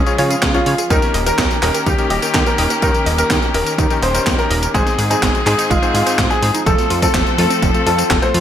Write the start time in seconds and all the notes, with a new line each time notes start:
Already playing: F3 G#3 G#4
0.06 C#3 C#4 F4 G#4 C#5, closed hi-hat, tambourine
0.18 C#3 C#4 F4 G#4 C#5, open hi-hat
0.30 G#4, closed hi-hat, tambourine
0.42 C#2 C#4, kick, snare, clap, closed hi-hat, tambourine
0.54 C#3 C#4 F4 G#4 C#5, closed hi-hat, tambourine
0.66 C#3 C#5, open hi-hat
0.78 G#4, closed hi-hat, tambourine
0.90 D#2 D#3 A#3 C#4 D#4 G4 A#4, kick, closed hi-hat, tambourine
1.02 snare, closed hi-hat, tambourine
1.14 D#1 D#5, open hi-hat
1.26 D#3 C#4 D#4 G4 A#4, closed hi-hat, tambourine
1.38 D#2 D#4, kick, snare, clap, closed hi-hat, tambourine
1.51 closed hi-hat, tambourine
1.62 D#1 D#3 C#4 D#4 G4 A#4 D#5, clap, open hi-hat
1.74 A#4, closed hi-hat, tambourine
1.86 D#2 D#4 G4, kick, closed hi-hat, tambourine
1.98 D#3 C#4 D#4 G4 A#4, closed hi-hat, tambourine
2.10 D#1 G4 D#5, open hi-hat
2.22 D#3 C#4 D#4 G4 A#4, closed hi-hat, tambourine
2.34 D#2 D#4, kick, snare, clap, closed hi-hat, tambourine
2.46 A#4, closed hi-hat, tambourine
2.58 D#1 D#3 C#4 D#4 G4 A#4 D#5, open hi-hat
2.70 A#4, closed hi-hat, tambourine
2.82 D#2 D#3 C#4 D#4 G4 A#4, kick, closed hi-hat, tambourine
2.94 closed hi-hat, tambourine
3.06 D#1 D#5, open hi-hat
3.18 D#3 C#4 D#4 G4 A#4, closed hi-hat, tambourine
3.30 D#2 D#4, kick, snare, clap, closed hi-hat, tambourine
3.42 closed hi-hat, tambourine
3.54 D#1 D#3 C#4 D#4 G4 A#4 D#5, open hi-hat
3.66 A#4, closed hi-hat, tambourine
3.78 D#2 D#4, kick, closed hi-hat, tambourine
3.90 D#3 C#4 D#4 G4 A#4, closed hi-hat, tambourine
4.02 D#1 C5 D#5, open hi-hat
4.14 D#3 C#4 D#4 G4 A#4, closed hi-hat, tambourine
4.26 D#2 D#4, kick, snare, clap, closed hi-hat, tambourine
4.38 A#4, closed hi-hat, tambourine
4.50 D#1 C#4 D#4 G4 A#4 D#5, open hi-hat
4.62 A#4, closed hi-hat, tambourine
4.74 G#1 G#2 G#3 C4 D#4 G#4 C5, kick, closed hi-hat, tambourine
4.87 snare, closed hi-hat, tambourine
4.98 G#2 G#4, open hi-hat
5.10 G#2 C4 D#4 G#4 C5, closed hi-hat, tambourine
5.22 G#1 G#3, kick, snare, clap, closed hi-hat, tambourine
5.35 closed hi-hat, tambourine
5.46 G#2 C4 D#4 G#4 C5, clap, open hi-hat
5.58 D#4, closed hi-hat, tambourine
5.70 G#1 G#3 F4, kick, closed hi-hat, tambourine
5.82 G#2 C4 D#4 G#4 C5, closed hi-hat, tambourine
5.94 G#2 F4 G#4, open hi-hat
6.06 G#2 C4 D#4 G#4 C5, closed hi-hat, tambourine
6.18 G#1 G#3, kick, snare, clap, closed hi-hat, tambourine
6.30 G#4, closed hi-hat, tambourine
6.42 G#2 F3 C4 D#4 G#4 C5, open hi-hat
6.54 D#4, closed hi-hat, tambourine
6.66 F1 F3 A3 C4 F4 A4, kick, closed hi-hat, tambourine
6.78 snare, closed hi-hat, tambourine
6.90 F2 F4, open hi-hat
7.02 A3 C4 F4 A4, kick, closed hi-hat, tambourine
7.14 F1 F3, kick, snare, clap, closed hi-hat, tambourine
7.27 closed hi-hat, tambourine
7.38 F2 A3 C4 F4 A4, open hi-hat
7.50 C4, closed hi-hat, tambourine
7.62 F1 F3, kick, closed hi-hat, tambourine
7.74 A3 C4 F4 A4, closed hi-hat, tambourine
7.86 F2 A3 C4 F4 A4, open hi-hat
7.98 C4, closed hi-hat, tambourine
8.10 F1 F3, kick, snare, clap, closed hi-hat, tambourine
8.22 A3 C4 F4 A4 C5, closed hi-hat, tambourine
8.34 F2 F4, open hi-hat